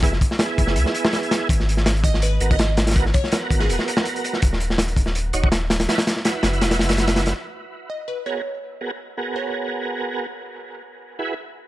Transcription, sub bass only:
X:1
M:4/4
L:1/8
Q:"Swing 16ths" 1/4=164
K:G#m
V:1 name="Sub bass" clef=bass
F,,, z2 F,,, C,, z3 | G,,,3 G,,,2 G,,,3- | G,,, z2 G,,, D,,, z3 | D,,,3 D,,,2 D,,,3 |
z3 F,,, E,,, F,,,3 | z8 | z8 | z8 |]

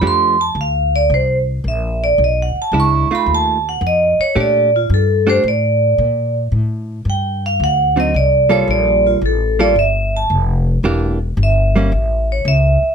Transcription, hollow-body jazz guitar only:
X:1
M:4/4
L:1/8
Q:"Swing" 1/4=111
K:F
V:1 name="Hollow-body jazz guitar"
[F,A,DG] z6 z | z2 [_A,DE] [=A,^D^E]2 z3 | [A,DG] z2 [A,DG] z4 | z4 z [D,^F,C_E] z [G,B,=FA]- |
[G,B,FA]2 z [G,B,FA] z4 | [E,B,DG] z2 [G,B,_D] z4 |]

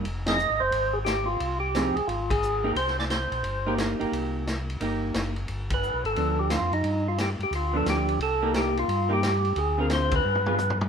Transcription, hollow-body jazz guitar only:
X:1
M:4/4
L:1/8
Q:"Swing" 1/4=176
K:Gm
V:1 name="Hollow-body jazz guitar"
z [F,CE_A] z6 | z2 [F,CE_A] z4 [B,EG] | z4 z [B,EG]2 [B,EG]- | [B,EG]2 z2 [B,EG]3 z |
z4 [F,=B,D]3 z | z4 z [F,=B,D]3 | z [B,EG]3 z [B,EG] z2 | z [D,CF_A]3 z [G,=B,FA] z2 |]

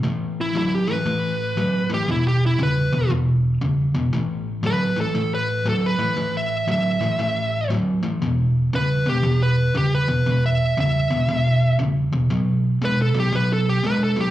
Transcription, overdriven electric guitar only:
X:1
M:4/4
L:1/8
Q:"Swing" 1/4=117
K:A
V:1 name="Overdriven electric guitar" clef=bass
[A,,E,]2 [A,,F,] [A,,E,] [A,,E,]2 [A,,F,] [A,,E,] | [E,,B,,]2 [E,,C,] [E,,B,,] [E,,B,,]2 [E,,C,] [E,,B,,] | [A,,E,]2 [A,,F,] [A,,E,] [A,,E,]2 [A,,F,] [A,,E,] | [A,,E,]2 [A,,F,] [A,,E,] [A,,E,]2 [A,,F,] [A,,E,] |
[E,,B,,]2 [E,,C,] [E,,B,,] [E,,B,,]2 [E,,C,] [E,,B,,] | [E,,B,,]2 [E,,C,] [E,,B,,] [E,,B,,]2 [E,,C,] [E,,B,,] | [B,,F,]2 [B,,G,] [B,,F,] [B,,F,]2 [B,,G,] [B,,F,] |]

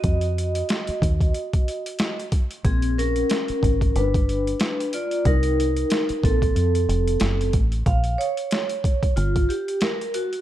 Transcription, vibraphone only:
X:1
M:4/4
L:1/8
Q:"Swing 16ths" 1/4=92
K:Bbm
V:1 name="Vibraphone"
[Ge]6- [Ge] z | [CA] [DB]3 [=D=B]3 [F=d] | [EB]3 [C=A]4 z | f d3 F =G B ^F |]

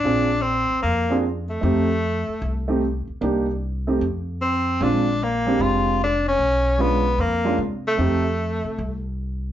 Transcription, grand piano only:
X:1
M:4/4
L:1/8
Q:"Swing" 1/4=151
K:Fmix
V:1 name="Grand piano"
[CDF_A] z4 [CDFA] z2 | [A,CEG] z4 [A,CEG] z2 | [B,DEG] z2 [A,CEG] z4 | [_A,CDF] z2 [A,CDG]3 z2 |
z2 [^G,_D=DF] z2 [G,_D=DF] z2 | [A,CEG] z6 z |]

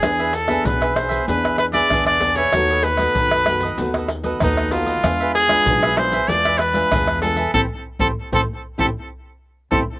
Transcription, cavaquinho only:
X:1
M:4/4
L:1/16
Q:1/4=96
K:Ephr
V:1 name="Cavaquinho"
[D^GBe] [GBe] z [GBe] [DGBe] [GBe]2 [GBe] [DGBe] [GBe] z [GBe] [DGBe]2 [DGBe] [GBe] | [^DAB^d] [ABd] z [ABd] [DABd] [ABd]2 [ABd] [DABd] [ABd] z [ABd] [DABd]2 [DABd] [ABd] | [D^GBe] [GBe] z [GBe] [DGBe] [GBe]2 [GBe] [DGBe] [GBe] z [GBe] [DGBe]2 [DGBe] [GBe] | [GAc] z2 [GAc] z [GAc] z2 [GAc] z4 z [GAc] z |]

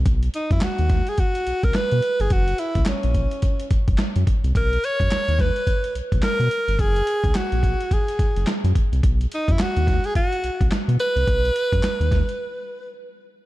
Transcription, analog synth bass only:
X:1
M:4/4
L:1/16
Q:"Swing 16ths" 1/4=107
K:B
V:1 name="Analog synth bass" clef=bass
B,,,2 z F,, D,, D,,2 z3 B,,, B,,, z B,, z =G,,, | F,,,2 z C,, A,,, A,,,2 z3 F,,, F,,, z F,, z =C,, | B,,,2 z F,, D,, D,,2 z3 B,,, B,,, z B,, z =G,,, | F,,,2 z C,, A,,, A,,,2 z3 F,,, F,,, z F,, z =C,, |
B,,,2 z F,, D,, D,,2 z3 B,,, B,,, z B,, z =C,, | B,,,2 z F,, D,, D,,2 z8 z |]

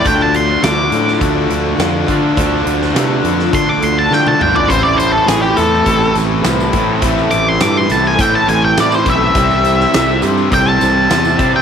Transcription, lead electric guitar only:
X:1
M:4/4
L:1/16
Q:1/4=103
K:Dm
V:1 name="Lead electric guitar"
g a c'2 d'8 z4 | z8 c' d' c' a g a g d | c d c A ^G =G A4 z6 | z2 d' c' d' c' a ^g =g a ^g =g d c e2- |
e6 z2 g a6 g |]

